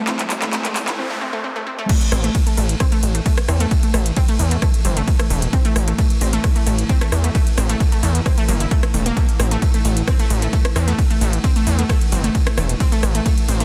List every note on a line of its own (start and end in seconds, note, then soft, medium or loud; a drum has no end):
0.00 riser medium
0.07 0.24 E3 loud
0.07 0.24 A3 medium
0.07 0.11 C4 medium
0.07 0.24 E4 loud
0.07 clap medium
0.07 closed hi-hat medium
0.07 noise sweep medium
0.19 0.25 A3 loud
0.19 clap medium
0.19 closed hi-hat medium
0.30 0.48 A1 loud
0.30 clap medium
0.30 open hi-hat loud
0.42 0.51 E3 medium
0.42 0.51 A3 medium
0.42 0.51 E4 loud
0.42 clap medium
0.42 closed hi-hat medium
0.53 0.69 E3 medium
0.53 0.69 A3 medium
0.53 0.57 C4 medium
0.53 0.69 E4 loud
0.53 clap loud
0.53 closed hi-hat medium
0.65 0.70 A3 loud
0.65 clap medium
0.65 closed hi-hat medium
0.76 0.93 E2 medium
0.76 clap loud
0.76 open hi-hat loud
0.87 0.97 E3 medium
0.87 0.96 A3 medium
0.87 0.97 A3 medium
0.87 0.97 E4 loud
0.87 clap medium
0.87 closed hi-hat medium
0.98 1.02 C4 medium
1.10 1.16 A3 loud
1.21 1.25 C4 medium
1.33 1.39 A3 loud
1.44 1.48 C4 medium
1.56 1.61 A3 loud
1.67 1.70 C4 medium
1.79 1.84 A3 loud
1.89 13.65 A2 medium
1.89 13.65 E3 medium
1.89 1.93 A3 medium
1.89 kick loud
1.89 closed hi-hat medium
1.89 crash loud
1.89 ride medium
2.01 closed hi-hat medium
2.12 2.30 A1 loud
2.12 2.16 C4 medium
2.12 cross-stick medium
2.12 open hi-hat loud
2.24 2.30 A3 loud
2.24 closed hi-hat medium
2.35 kick loud
2.35 closed hi-hat medium
2.35 ride medium
2.47 2.55 A3 medium
2.47 closed hi-hat medium
2.57 2.75 A1 medium
2.57 2.61 A3 medium
2.57 open hi-hat medium
2.69 closed hi-hat medium
2.80 2.84 C4 medium
2.80 kick loud
2.80 cross-stick medium
2.80 closed hi-hat medium
2.80 ride medium
2.92 2.98 A3 loud
2.92 closed hi-hat medium
3.03 3.20 A1 medium
3.03 open hi-hat loud
3.15 3.23 A3 medium
3.15 closed hi-hat medium
3.26 3.29 A3 medium
3.26 kick loud
3.26 closed hi-hat medium
3.26 ride medium
3.38 cross-stick medium
3.38 closed hi-hat medium
3.48 3.66 E2 loud
3.48 3.52 C4 medium
3.48 cross-stick medium
3.48 open hi-hat medium
3.60 3.66 A3 loud
3.60 closed hi-hat medium
3.71 kick loud
3.71 closed hi-hat medium
3.71 ride medium
3.83 3.92 A3 medium
3.83 closed hi-hat medium
3.94 4.11 A1 loud
3.94 3.98 A3 medium
3.94 cross-stick medium
3.94 open hi-hat loud
4.06 closed hi-hat medium
4.17 4.20 C4 medium
4.17 kick loud
4.17 closed hi-hat medium
4.17 ride medium
4.28 4.34 A3 loud
4.28 closed hi-hat medium
4.39 4.57 E2 medium
4.39 open hi-hat loud
4.51 4.60 A3 medium
4.51 closed hi-hat medium
4.62 4.66 A3 medium
4.62 kick loud
4.62 cross-stick medium
4.62 closed hi-hat medium
4.62 ride medium
4.74 closed hi-hat medium
4.85 5.02 G1 loud
4.85 4.89 C4 medium
4.85 open hi-hat loud
4.97 5.02 A3 loud
4.97 closed hi-hat medium
5.08 kick loud
5.08 closed hi-hat medium
5.08 ride medium
5.19 5.28 A3 medium
5.19 cross-stick medium
5.19 closed hi-hat medium
5.30 5.48 E1 loud
5.30 5.34 A3 medium
5.30 open hi-hat loud
5.42 closed hi-hat medium
5.53 5.57 C4 medium
5.53 kick loud
5.53 closed hi-hat medium
5.53 ride medium
5.65 5.71 A3 loud
5.65 closed hi-hat medium
5.76 5.93 A1 loud
5.76 cross-stick medium
5.76 open hi-hat loud
5.88 5.96 A3 medium
5.88 closed hi-hat medium
5.98 6.02 A3 medium
5.98 kick loud
5.98 closed hi-hat medium
5.98 ride medium
6.10 closed hi-hat medium
6.21 6.39 A1 medium
6.21 6.25 C4 medium
6.21 open hi-hat loud
6.33 6.39 A3 loud
6.33 closed hi-hat medium
6.44 kick loud
6.44 cross-stick medium
6.44 closed hi-hat medium
6.44 ride medium
6.56 6.64 A3 medium
6.56 closed hi-hat medium
6.67 6.84 A1 medium
6.67 6.70 A3 medium
6.67 open hi-hat loud
6.79 closed hi-hat medium
6.89 6.93 C4 medium
6.89 kick loud
6.89 closed hi-hat medium
6.89 ride medium
7.01 7.07 A3 loud
7.01 cross-stick medium
7.01 closed hi-hat medium
7.12 7.30 E2 loud
7.12 cross-stick medium
7.12 open hi-hat loud
7.24 7.32 A3 medium
7.24 closed hi-hat medium
7.35 7.39 A3 medium
7.35 kick loud
7.35 closed hi-hat medium
7.35 ride medium
7.47 closed hi-hat medium
7.58 7.75 A1 loud
7.58 7.61 C4 medium
7.58 cross-stick medium
7.58 open hi-hat loud
7.69 7.75 A3 loud
7.69 closed hi-hat medium
7.80 kick loud
7.80 closed hi-hat medium
7.80 ride medium
7.92 8.01 A3 medium
7.92 closed hi-hat medium
8.03 8.20 E2 medium
8.03 8.07 A3 medium
8.03 open hi-hat loud
8.15 closed hi-hat medium
8.26 8.29 C4 medium
8.26 kick loud
8.26 cross-stick medium
8.26 closed hi-hat medium
8.26 ride medium
8.38 8.43 A3 loud
8.38 closed hi-hat medium
8.48 8.66 G1 loud
8.48 8.55 A#3 medium
8.48 open hi-hat loud
8.60 8.66 E4 medium
8.60 closed hi-hat medium
8.71 8.75 A3 medium
8.71 kick loud
8.71 closed hi-hat medium
8.71 ride medium
8.83 cross-stick medium
8.83 closed hi-hat medium
8.94 9.11 E1 loud
8.94 9.03 A3 medium
8.94 open hi-hat loud
9.06 9.14 A#3 loud
9.06 closed hi-hat medium
9.17 9.20 A3 medium
9.17 kick loud
9.17 closed hi-hat medium
9.17 ride medium
9.29 closed hi-hat medium
9.39 9.57 A1 loud
9.39 9.43 C4 medium
9.39 cross-stick medium
9.39 open hi-hat loud
9.51 9.57 A3 loud
9.51 closed hi-hat medium
9.62 kick loud
9.62 closed hi-hat medium
9.62 ride medium
9.74 9.83 A3 medium
9.74 closed hi-hat medium
9.85 10.02 A1 medium
9.85 9.89 A3 medium
9.85 open hi-hat loud
9.97 closed hi-hat medium
10.08 10.11 C4 medium
10.08 kick loud
10.08 cross-stick medium
10.08 closed hi-hat medium
10.08 ride medium
10.19 10.25 A3 loud
10.19 closed hi-hat medium
10.30 10.48 A1 medium
10.30 open hi-hat loud
10.42 10.51 A3 medium
10.42 closed hi-hat medium
10.53 10.57 A3 medium
10.53 kick loud
10.53 closed hi-hat medium
10.53 ride medium
10.65 cross-stick loud
10.65 closed hi-hat medium
10.76 10.93 E2 loud
10.76 10.79 C4 medium
10.76 cross-stick medium
10.76 open hi-hat medium
10.88 10.93 A3 loud
10.88 closed hi-hat medium
10.98 kick loud
10.98 closed hi-hat medium
10.98 ride medium
11.10 11.19 A3 medium
11.10 closed hi-hat medium
11.21 11.39 A1 loud
11.21 11.25 A3 medium
11.21 open hi-hat loud
11.33 closed hi-hat medium
11.44 11.48 C4 medium
11.44 kick loud
11.44 closed hi-hat medium
11.44 ride medium
11.56 11.62 A3 loud
11.56 closed hi-hat medium
11.67 11.84 E2 medium
11.67 open hi-hat medium
11.79 11.87 A3 medium
11.79 closed hi-hat medium
11.89 11.93 A3 medium
11.89 kick loud
11.89 cross-stick medium
11.89 closed hi-hat medium
11.89 ride medium
12.01 closed hi-hat medium
12.12 12.30 G1 loud
12.12 12.16 C4 medium
12.12 open hi-hat loud
12.24 12.30 A3 loud
12.24 closed hi-hat medium
12.35 kick loud
12.35 closed hi-hat medium
12.35 ride medium
12.47 12.55 A3 medium
12.47 cross-stick loud
12.47 closed hi-hat medium
12.57 12.75 E1 loud
12.57 12.61 A3 medium
12.57 cross-stick loud
12.57 open hi-hat medium
12.69 closed hi-hat medium
12.80 12.84 C4 medium
12.80 kick loud
12.80 closed hi-hat medium
12.80 ride medium
12.92 12.98 A3 loud
12.92 closed hi-hat medium
13.03 13.20 A1 loud
13.03 cross-stick medium
13.03 open hi-hat loud
13.15 13.23 A3 medium
13.15 closed hi-hat medium
13.26 13.29 A3 medium
13.26 kick loud
13.26 closed hi-hat medium
13.26 ride medium
13.38 closed hi-hat medium
13.48 13.65 A1 medium
13.48 13.52 C4 medium
13.48 open hi-hat medium
13.60 13.65 A3 loud
13.60 closed hi-hat medium